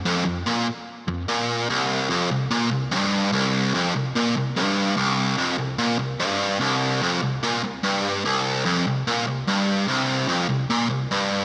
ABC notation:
X:1
M:4/4
L:1/8
Q:1/4=146
K:F
V:1 name="Distorted electric guitar" clef=bass
F,, F,, B,, z2 F,, B,,2 | C,,2 F,, C,, B,, C,, G,,2 | C,,2 F,, C,, B,, C,, G,,2 | C,,2 F,, C,, B,, C,, G,,2 |
C,,2 F,, C,, B,, C,, G,,2 | C,,2 F,, C,, B,, C,, G,,2 | C,,2 F,, C,, B,, C,, G,,2 |]